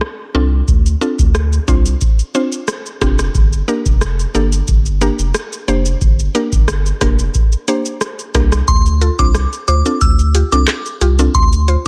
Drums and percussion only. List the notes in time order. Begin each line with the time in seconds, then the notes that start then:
0.01 cross-stick
0.68 kick, shaker
0.86 shaker
1.02 shaker
1.19 kick, shaker
1.35 cross-stick, shaker
1.53 shaker
1.68 kick, shaker
1.86 shaker
2.01 kick, shaker
2.19 shaker
2.35 shaker
2.52 shaker
2.68 cross-stick, shaker
2.86 shaker
3.01 kick, cross-stick, shaker
3.19 cross-stick, shaker
3.35 kick, shaker
3.53 shaker
3.68 shaker
3.86 kick, shaker
4.01 cross-stick, shaker
4.19 shaker
4.35 shaker
4.52 shaker
4.68 kick, shaker
4.86 shaker
5.01 shaker
5.19 shaker
5.34 cross-stick, shaker
5.53 shaker
5.68 shaker
5.86 shaker
6.01 kick, shaker
6.19 shaker
6.35 closed hi-hat, shaker
6.52 kick, shaker
6.68 cross-stick, shaker
6.86 shaker
7.01 kick, cross-stick, closed hi-hat, shaker
7.19 shaker
7.34 kick, shaker
7.52 shaker
7.68 closed hi-hat, shaker
7.86 shaker
8.01 cross-stick, shaker
8.19 shaker
8.35 kick, cross-stick, closed hi-hat, shaker
8.52 cross-stick, shaker
8.68 kick, shaker
8.86 shaker
9.01 closed hi-hat, shaker
9.19 kick, shaker
9.35 cross-stick, shaker
9.53 shaker
9.68 closed hi-hat, shaker
9.86 shaker
10.01 kick, shaker
10.19 shaker
10.35 closed hi-hat, shaker
10.52 shaker
10.68 cross-stick, clap, shaker
10.86 shaker
11.01 closed hi-hat, shaker
11.19 shaker
11.35 kick, shaker
11.53 shaker
11.68 closed hi-hat, shaker